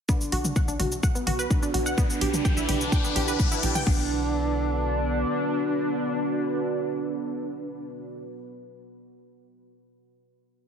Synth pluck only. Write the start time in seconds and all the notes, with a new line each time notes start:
0.09 B3
0.32 F#4
0.56 F#5
0.68 D4
0.80 F#4
1.03 F#5
1.15 B3
1.27 F#4
1.39 B4
1.63 D4
1.74 F#4
1.86 F#5
1.98 B3
2.21 G4
2.45 G5
2.57 E4
2.69 G4
2.92 G5
3.04 B3
3.16 G4
3.28 B4
3.52 E4
3.63 G4
3.75 G5
3.87 B3